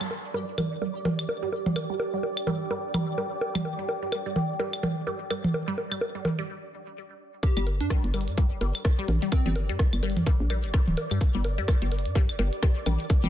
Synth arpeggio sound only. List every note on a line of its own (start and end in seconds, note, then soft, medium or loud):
0.01 0.04 G3 medium
0.34 0.44 G3 loud
0.58 0.67 G3 medium
0.82 0.88 G3 medium
1.05 1.09 G3 medium
1.43 1.49 G3 loud
1.66 1.73 G3 medium
1.90 1.94 G3 medium
2.14 2.16 G3 medium
2.47 2.57 G3 loud
2.71 2.80 G3 medium
2.94 3.01 G3 medium
3.18 3.22 G3 medium
3.55 3.62 G3 loud
3.79 3.86 G3 medium
4.02 4.07 G3 medium
4.26 4.29 G3 medium
4.59 4.69 G3 medium
4.83 4.93 G3 medium
5.07 5.13 G3 medium
5.30 5.34 G3 medium
5.68 5.75 G3 loud
5.91 5.98 G3 medium
6.15 6.20 G3 medium
6.39 6.41 G3 medium
7.57 7.60 G3 medium
7.90 8.00 G3 loud
8.14 8.23 G3 medium
8.38 8.44 G3 medium
8.61 8.65 G3 medium
8.99 9.05 G3 loud
9.22 9.29 G3 medium
9.46 9.50 G3 medium
9.69 9.72 G3 medium
10.03 10.12 G3 loud
10.26 10.36 G3 medium
10.50 10.56 G3 medium
10.74 10.77 G3 medium
11.11 11.18 G3 loud
11.35 11.41 G3 medium
11.58 11.63 G3 medium
11.82 11.85 G3 medium
12.15 12.25 G3 loud
12.39 12.49 G3 medium
12.63 12.69 G3 medium
12.86 12.90 G3 medium
13.24 13.29 G3 loud